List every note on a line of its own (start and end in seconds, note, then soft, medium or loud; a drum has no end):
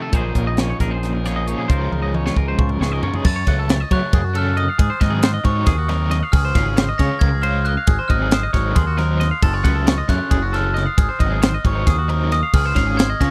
0.00 0.13 F2 medium
0.00 0.10 C3 medium
0.00 0.11 C3 medium
0.00 0.12 D#3 medium
0.00 0.17 F3 medium
0.00 0.11 A3 medium
0.00 0.12 A3 medium
0.00 0.11 C4 medium
0.00 0.13 F4 soft
0.00 0.11 A4 medium
0.00 0.13 A4 medium
0.11 0.32 A#1 medium
0.11 1.23 A#2 medium
0.11 1.66 A#2 medium
0.11 1.23 F3 medium
0.11 1.24 A#3 medium
0.11 0.35 C#4 medium
0.11 1.24 C#4 medium
0.11 0.57 D#4 medium
0.11 0.80 G#4 medium
0.11 0.36 C5 medium
0.11 kick loud
0.11 closed hi-hat medium
0.35 0.72 A#1 medium
0.35 1.69 C#4 medium
0.35 0.47 A#4 medium
0.35 kick medium
0.35 closed hi-hat medium
0.47 0.59 D#5 medium
0.57 1.66 A#3 medium
0.57 1.02 D#4 medium
0.57 0.69 C#5 medium
0.57 snare loud
0.57 closed hi-hat medium
0.70 0.80 C#5 medium
0.80 1.54 A#1 medium
0.80 1.26 G#4 medium
0.80 0.91 A#4 medium
0.80 kick medium
0.80 snare soft
0.80 closed hi-hat medium
0.91 1.14 C5 medium
1.03 1.47 D#4 medium
1.03 snare soft
1.03 closed hi-hat medium
1.14 1.26 A#4 medium
1.24 1.45 A#2 medium
1.24 1.67 F3 medium
1.24 1.47 F3 medium
1.24 1.46 A#3 medium
1.24 1.50 C#4 medium
1.24 1.70 G#4 medium
1.24 1.36 C#5 medium
1.24 snare soft
1.24 closed hi-hat medium
1.36 1.47 D#5 medium
1.46 1.68 A#2 medium
1.46 1.68 F3 medium
1.46 1.69 A#3 medium
1.46 1.72 C#4 medium
1.46 1.68 D#4 medium
1.46 1.58 C#5 medium
1.46 closed hi-hat medium
1.58 1.69 G#4 medium
1.68 1.88 C#2 medium
1.68 3.24 C#3 medium
1.68 2.79 C#3 medium
1.68 2.79 F3 medium
1.68 2.80 G#3 medium
1.68 2.81 C#4 medium
1.68 1.91 D#4 medium
1.68 2.14 F4 medium
1.68 2.36 A#4 medium
1.68 1.92 C5 medium
1.68 kick medium
1.68 closed hi-hat medium
1.92 2.28 C#2 medium
1.92 2.13 D#4 medium
1.92 2.02 A#4 medium
1.92 high tom medium
2.02 2.15 D#5 medium
2.14 3.22 G#3 medium
2.14 2.26 D#4 medium
2.14 2.25 C#5 medium
2.14 high tom medium
2.26 2.59 F4 soft
2.26 2.37 C#5 medium
2.26 snare medium
2.36 2.54 C#2 medium
2.36 2.81 A#4 medium
2.36 2.48 A#4 medium
2.36 kick medium
2.48 2.70 C5 medium
2.59 2.77 C#2 medium
2.59 3.03 F4 medium
2.59 3.21 C#6 medium
2.59 kick loud
2.59 mid tom medium
2.69 2.81 A#4 medium
2.69 mid tom medium
2.80 2.99 C#2 medium
2.80 3.25 G#2 medium
2.80 3.01 C#3 medium
2.80 3.02 F3 medium
2.80 3.02 G#3 medium
2.80 3.01 C#4 medium
2.80 2.93 G#4 medium
2.80 2.92 C#5 medium
2.80 snare medium
2.92 3.25 A#4 soft
2.92 3.03 D#5 medium
3.02 3.25 C#3 medium
3.02 3.24 F3 medium
3.02 3.24 G#3 medium
3.02 3.23 C#4 medium
3.02 3.23 F4 medium
3.02 3.14 C#5 medium
3.02 floor tom medium
3.14 3.26 G#4 medium
3.14 floor tom medium
3.24 3.43 F#2 loud
3.24 3.36 A4 medium
3.24 3.66 A6 loud
3.24 kick loud
3.24 crash loud
3.36 3.47 C#5 medium
3.47 3.83 C#2 medium
3.47 3.76 C#3 medium
3.47 3.76 F#3 medium
3.47 3.76 A3 medium
3.47 3.76 C#4 medium
3.47 3.58 F#5 medium
3.47 kick medium
3.47 ride medium
3.59 3.69 A4 medium
3.69 3.80 C#5 medium
3.69 snare loud
3.69 ride loud
3.80 3.91 D#5 medium
3.91 4.20 C#3 medium
3.91 4.00 F#3 loud
3.91 4.20 F#3 medium
3.91 4.20 A3 medium
3.91 4.20 C#4 medium
3.91 4.13 C#5 medium
3.91 4.37 F#6 loud
3.91 kick medium
3.91 ride medium
4.13 4.67 F#2 medium
4.13 4.24 G#4 medium
4.13 kick loud
4.13 ride loud
4.24 4.35 F#4 medium
4.35 4.64 C#3 medium
4.35 4.64 F#3 medium
4.35 4.64 A3 medium
4.35 4.63 C#4 loud
4.35 4.57 A4 medium
4.35 4.59 F6 loud
4.35 ride medium
4.57 4.68 D#5 medium
4.57 5.21 D#6 medium
4.57 ride medium
4.68 4.79 F5 medium
4.78 4.88 G#2 loud
4.78 4.90 G#4 medium
4.78 kick loud
4.78 ride loud
4.90 5.00 C5 medium
5.00 5.37 G#2 medium
5.00 5.30 D#3 medium
5.00 5.30 F#3 medium
5.00 5.30 C4 medium
5.00 5.30 D#4 medium
5.00 5.12 D#5 medium
5.00 kick medium
5.00 snare soft
5.00 ride medium
5.10 5.22 G#4 medium
5.23 5.33 C5 medium
5.23 snare loud
5.23 ride loud
5.34 5.44 D#5 medium
5.44 5.63 G#2 loud
5.44 5.74 D#3 medium
5.44 5.74 F#3 medium
5.44 5.74 C4 medium
5.44 5.73 D#4 medium
5.44 5.67 C#5 medium
5.44 5.68 C#6 medium
5.44 kick medium
5.44 ride medium
5.66 6.21 D#2 medium
5.66 5.78 G#4 medium
5.66 6.35 D#6 medium
5.66 kick loud
5.66 snare soft
5.66 ride loud
5.78 5.89 F#4 medium
5.89 6.18 D#3 medium
5.89 6.18 F#3 medium
5.89 6.18 C4 medium
5.89 6.18 D#4 medium
5.89 6.11 A#4 medium
5.89 snare soft
5.89 ride medium
6.11 6.23 D#5 medium
6.11 snare soft
6.11 ride medium
6.23 6.33 F5 medium
6.32 6.51 C#2 loud
6.32 6.44 G#4 medium
6.32 7.01 F6 loud
6.32 kick loud
6.32 crash loud
6.45 6.56 C5 medium
6.55 6.91 G#1 medium
6.55 6.84 C#3 medium
6.55 6.84 G#3 medium
6.55 6.84 C#4 medium
6.55 6.84 F4 medium
6.55 6.66 F5 medium
6.55 kick medium
6.55 snare soft
6.55 ride medium
6.65 6.76 G#4 medium
6.76 6.88 C5 medium
6.76 snare loud
6.76 ride loud
6.89 7.00 D#5 medium
6.98 7.09 C#3 loud
6.98 7.29 C#3 medium
6.98 7.29 G#3 medium
6.98 7.28 C#4 medium
6.98 7.28 F4 medium
6.98 7.22 C#5 medium
6.98 7.21 A#6 loud
6.98 kick medium
6.98 snare soft
6.98 ride medium
7.19 7.76 C#2 loud
7.19 7.33 A#4 medium
7.19 7.43 G#6 loud
7.19 kick loud
7.19 ride loud
7.33 7.44 G#4 medium
7.41 7.72 C#3 medium
7.41 7.72 G#3 medium
7.41 7.72 C#4 medium
7.41 7.72 F4 loud
7.41 7.67 C5 medium
7.41 7.65 F6 medium
7.41 ride medium
7.65 7.77 D#5 medium
7.65 8.11 F#6 loud
7.65 ride medium
7.77 7.88 F5 medium
7.87 7.97 G#1 medium
7.87 7.99 G#4 medium
7.87 kick loud
7.87 ride loud
7.99 8.10 C5 medium
8.08 8.46 G#1 medium
8.08 8.39 D#3 medium
8.08 8.39 F#3 medium
8.08 8.38 C4 loud
8.08 8.38 D#4 medium
8.08 8.21 D#5 medium
8.08 8.32 F6 loud
8.08 kick medium
8.08 ride medium
8.22 8.33 G#4 medium
8.31 8.43 C5 medium
8.31 8.78 D#6 medium
8.31 snare loud
8.31 ride loud
8.43 8.53 D#5 medium
8.53 8.72 G#1 loud
8.53 8.83 D#3 medium
8.53 8.83 F#3 medium
8.53 8.83 C4 medium
8.53 8.83 D#4 medium
8.53 8.76 C#5 medium
8.53 kick medium
8.53 snare soft
8.53 ride medium
8.75 9.31 D#2 medium
8.75 8.87 G#4 medium
8.75 9.44 C6 medium
8.75 kick loud
8.75 ride loud
8.87 8.98 F#4 medium
8.98 9.27 D#3 medium
8.98 9.27 F#3 medium
8.98 9.27 C4 medium
8.98 9.27 D#4 loud
8.98 9.20 A#4 medium
8.98 snare soft
8.98 ride medium
9.20 9.31 D#5 medium
9.20 snare soft
9.20 ride medium
9.31 9.42 F5 medium
9.42 9.61 F#1 loud
9.42 9.54 A4 medium
9.42 9.84 A6 loud
9.42 kick loud
9.42 crash loud
9.54 9.65 C#5 medium
9.64 10.01 C#2 medium
9.64 9.94 C#3 medium
9.64 9.94 F#3 medium
9.64 9.93 A3 medium
9.64 9.93 C#4 loud
9.64 9.75 F#5 medium
9.64 kick medium
9.64 ride medium
9.75 9.87 A4 medium
9.87 9.98 C#5 medium
9.87 snare loud
9.87 ride loud
9.98 10.09 D#5 medium
10.08 10.18 F#2 loud
10.08 10.38 C#3 medium
10.08 10.38 F#3 medium
10.08 10.38 A3 medium
10.08 10.37 C#4 medium
10.08 10.31 C#5 medium
10.08 10.55 F#6 loud
10.08 kick medium
10.08 snare soft
10.08 ride medium
10.31 10.86 F#1 loud
10.31 10.42 G#4 medium
10.31 kick loud
10.31 ride loud
10.42 10.53 F#4 medium
10.53 10.83 C#3 medium
10.53 10.83 F#3 medium
10.53 10.82 A3 medium
10.53 10.82 C#4 loud
10.53 10.75 A4 medium
10.53 10.77 F6 loud
10.53 snare soft
10.53 ride medium
10.74 10.86 D#5 medium
10.74 snare soft
10.74 ride medium
10.78 11.39 D#6 medium
10.86 10.97 F5 medium
10.98 11.07 G#1 loud
10.98 11.09 G#4 medium
10.98 kick loud
10.98 ride loud
11.09 11.20 C5 medium
11.19 11.56 G#1 medium
11.19 11.49 D#3 medium
11.19 11.49 F#3 medium
11.19 11.49 C4 medium
11.19 11.49 D#4 medium
11.19 11.31 D#5 medium
11.19 kick medium
11.19 ride medium
11.31 11.42 G#4 medium
11.42 11.53 C5 medium
11.42 snare loud
11.42 ride loud
11.54 11.65 D#5 medium
11.64 11.83 G#1 loud
11.64 11.94 D#3 medium
11.64 11.94 F#3 medium
11.64 11.93 C4 medium
11.64 11.93 D#4 medium
11.64 11.87 C#5 medium
11.64 11.88 C#6 medium
11.64 kick medium
11.64 ride medium
11.87 12.42 D#2 medium
11.87 11.98 G#4 medium
11.87 12.32 D#6 medium
11.87 kick loud
11.87 snare soft
11.87 ride loud
11.98 12.09 F#4 medium
12.09 12.38 D#3 medium
12.09 12.38 F#3 medium
12.09 12.38 C4 medium
12.09 12.38 D#4 loud
12.09 12.31 A#4 medium
12.09 ride medium
12.32 12.42 D#5 medium
12.32 12.42 D#6 loud
12.32 snare soft
12.32 ride medium
12.43 12.54 F5 medium
12.54 12.72 C#2 loud
12.54 12.65 G#4 medium
12.54 13.00 F6 loud
12.54 kick loud
12.54 crash loud
12.65 12.76 C5 medium
12.75 13.13 G#1 medium
12.75 13.05 C#3 medium
12.75 13.05 G#3 medium
12.75 13.05 C#4 loud
12.75 13.04 F4 medium
12.75 12.87 F5 medium
12.75 kick medium
12.75 snare soft
12.75 ride medium
12.87 12.97 G#4 medium
12.97 13.09 C5 medium
12.97 13.21 G#6 loud
12.97 snare loud
12.97 ride loud
13.10 13.21 D#5 medium
13.20 13.30 C#3 loud
13.20 13.30 C#3 medium
13.20 13.30 G#3 medium
13.20 13.30 C#4 medium
13.20 13.30 F4 medium
13.20 13.30 C#5 medium
13.20 13.30 A#6 loud
13.20 kick medium
13.20 snare soft
13.20 ride medium